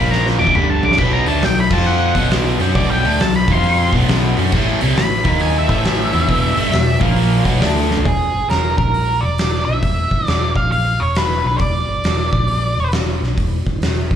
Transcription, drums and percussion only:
0.12 snare medium
0.27 snare medium
0.47 kick medium
0.55 mid tom loud
0.83 floor tom loud
0.92 snare loud
0.98 kick loud
0.98 crash loud
1.26 open hi-hat medium
1.42 snare loud
1.42 open hi-hat medium
1.70 kick loud
1.70 crash loud
2.15 kick medium
2.15 snare soft
2.15 open hi-hat medium
2.30 snare loud
2.30 open hi-hat medium
2.47 snare soft
2.60 open hi-hat medium
2.75 kick loud
2.75 open hi-hat medium
3.05 open hi-hat medium
3.20 snare loud
3.20 open hi-hat medium
3.48 kick loud
3.48 open hi-hat medium
3.64 open hi-hat loud
3.93 kick medium
3.93 snare soft
3.93 open hi-hat medium
4.08 snare loud
4.08 open hi-hat medium
4.37 open hi-hat medium
4.52 kick loud
4.52 crash loud
4.81 open hi-hat medium
4.96 snare loud
4.96 open hi-hat medium
5.24 kick loud
5.24 open hi-hat medium
5.40 open hi-hat loud
5.69 kick medium
5.69 snare soft
5.69 open hi-hat medium
5.84 snare loud
5.84 open hi-hat loud
6.00 snare soft
6.13 open hi-hat medium
6.28 kick loud
6.28 open hi-hat medium
6.57 open hi-hat medium
6.72 snare loud
6.72 open hi-hat medium
7.00 kick loud
7.00 open hi-hat medium
7.16 open hi-hat loud
7.45 kick loud
7.45 snare soft
7.45 open hi-hat medium
7.61 snare loud
7.61 open hi-hat loud
7.77 snare soft
7.91 snare medium
7.97 floor tom loud
8.05 kick loud
8.05 open hi-hat medium
8.50 snare loud
8.50 open hi-hat soft
8.78 kick loud
8.94 open hi-hat medium
9.38 snare loud
9.38 open hi-hat medium
9.55 snare soft
9.83 kick loud
9.83 open hi-hat medium
10.11 kick medium
10.27 snare loud
10.27 open hi-hat medium
10.56 kick loud
10.72 open hi-hat medium
11.15 snare loud
11.15 open hi-hat medium
11.59 kick loud
11.59 open hi-hat medium
12.04 snare loud
12.04 open hi-hat medium
12.33 kick loud
12.48 open hi-hat medium
12.92 snare loud
12.92 open hi-hat medium
13.23 snare soft
13.38 kick loud
13.38 open hi-hat medium
13.66 kick medium
13.82 snare loud
13.82 open hi-hat medium
14.11 kick loud

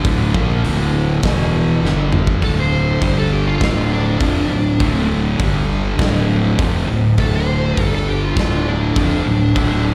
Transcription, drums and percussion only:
0.05 kick loud
0.05 open hi-hat medium
0.34 kick loud
0.64 open hi-hat medium
1.23 kick loud
1.23 snare loud
1.23 open hi-hat medium
1.85 snare medium
2.12 mid tom medium
2.27 kick loud
2.42 kick loud
2.42 open hi-hat medium
3.02 kick loud
3.02 open hi-hat medium
3.61 kick loud
3.61 snare loud
3.61 open hi-hat medium
4.20 kick loud
4.20 open hi-hat medium
4.80 kick loud
4.80 open hi-hat medium
5.39 kick loud
5.39 open hi-hat medium
5.99 kick loud
5.99 snare loud
5.99 open hi-hat medium
6.59 kick loud
6.59 open hi-hat medium
7.18 kick loud
7.18 open hi-hat medium
7.77 kick loud
7.77 open hi-hat medium
8.37 kick loud
8.37 snare loud
8.37 open hi-hat medium
8.96 kick loud
8.96 open hi-hat medium
9.56 kick loud
9.56 open hi-hat medium

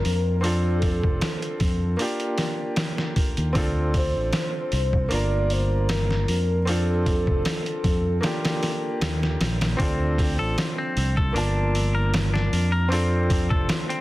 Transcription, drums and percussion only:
0.05 open hi-hat medium
0.44 open hi-hat medium
0.82 kick medium
0.82 open hi-hat medium
1.04 kick medium
1.21 snare loud
1.21 open hi-hat medium
1.42 closed hi-hat soft
1.60 kick medium
1.60 open hi-hat medium
1.99 open hi-hat medium
2.20 closed hi-hat soft
2.38 snare medium
2.38 open hi-hat medium
2.76 snare loud
2.76 open hi-hat medium
2.98 snare soft
3.16 kick medium
3.16 open hi-hat medium
3.37 closed hi-hat soft
3.55 kick loud
3.55 open hi-hat medium
3.94 kick medium
3.94 open hi-hat medium
4.33 snare loud
4.33 open hi-hat medium
4.72 open hi-hat medium
4.93 kick loud
5.11 open hi-hat medium
5.50 open hi-hat medium
5.89 snare loud
5.89 open hi-hat medium
6.11 snare soft
6.28 open hi-hat medium
6.67 open hi-hat medium
7.06 kick medium
7.06 open hi-hat medium
7.27 kick medium
7.45 snare loud
7.45 open hi-hat medium
7.66 closed hi-hat soft
7.84 kick medium
7.84 open hi-hat medium
8.23 snare loud
8.23 open hi-hat medium
8.45 snare loud
8.45 open hi-hat medium
8.63 snare soft
8.63 open hi-hat medium
9.01 snare loud
9.01 open hi-hat medium
9.23 snare soft
9.41 snare loud
9.41 open hi-hat medium
9.61 snare loud
9.61 open hi-hat medium
9.79 kick loud
9.79 open hi-hat medium
10.18 kick medium
10.18 open hi-hat medium
10.58 snare loud
10.58 open hi-hat medium
10.97 open hi-hat medium
11.17 kick loud
11.36 open hi-hat medium
11.75 open hi-hat medium
12.14 snare loud
12.14 open hi-hat medium
12.35 snare soft
12.53 open hi-hat medium
12.92 open hi-hat medium
13.30 kick medium
13.30 open hi-hat medium
13.51 kick loud
13.69 snare loud
13.69 open hi-hat medium
13.90 closed hi-hat soft

